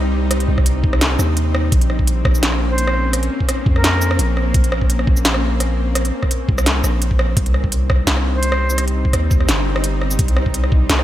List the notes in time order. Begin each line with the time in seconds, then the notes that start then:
Already playing: C2 C3 G3 C4 D#4
0.31 cross-stick, closed hi-hat
0.40 closed hi-hat
0.48 C2
0.58 kick, cross-stick
0.66 closed hi-hat
0.84 kick
0.93 cross-stick
1.01 snare, closed hi-hat
1.19 D#2, cross-stick, shaker
1.37 closed hi-hat
1.55 cross-stick
1.72 A#1 A#3 C#4, kick, closed hi-hat
1.81 closed hi-hat
1.90 cross-stick
1.99 kick
2.07 closed hi-hat
2.25 A#1, kick, cross-stick
2.35 shaker
2.43 snare, closed hi-hat
2.52 cross-stick
2.70 C5
2.78 closed hi-hat
2.87 cross-stick
3.13 cross-stick, closed hi-hat
3.23 closed hi-hat
3.40 kick
3.49 cross-stick, closed hi-hat
3.66 F2, kick
3.76 A#4, cross-stick
3.84 snare, closed hi-hat
4.02 shaker
4.11 cross-stick
4.19 A#1, closed hi-hat
4.37 cross-stick
4.54 A#1, kick, closed hi-hat
4.64 closed hi-hat
4.72 cross-stick
4.82 kick
4.90 closed hi-hat
4.99 cross-stick
5.07 A#1, kick
5.17 shaker
5.25 snare, closed hi-hat
5.34 cross-stick
5.60 cross-stick, closed hi-hat
5.95 cross-stick, closed hi-hat
6.05 closed hi-hat
6.23 kick, cross-stick
6.31 closed hi-hat
6.49 C2, kick
6.58 cross-stick, shaker
6.66 snare, closed hi-hat
6.84 A#1, cross-stick, shaker
7.02 closed hi-hat
7.11 kick
7.19 cross-stick
7.37 C2 C3 G3 C4 D#4, kick, closed hi-hat
7.46 closed hi-hat
7.54 cross-stick
7.64 kick
7.72 closed hi-hat
7.90 kick, cross-stick
8.07 C2, snare, closed hi-hat
8.17 cross-stick
8.35 C5
8.43 closed hi-hat
8.52 cross-stick
8.70 shaker
8.78 cross-stick, closed hi-hat
8.88 closed hi-hat
9.05 kick
9.13 D#2, cross-stick, closed hi-hat
9.31 kick, shaker
9.40 cross-stick
9.48 G1, snare, closed hi-hat, shaker
9.76 cross-stick
9.84 closed hi-hat
10.01 cross-stick
10.11 shaker
10.19 C2, kick, closed hi-hat
10.28 closed hi-hat
10.37 cross-stick
10.46 kick
10.54 closed hi-hat
10.64 cross-stick
10.72 kick
10.90 C2, snare, closed hi-hat
10.99 cross-stick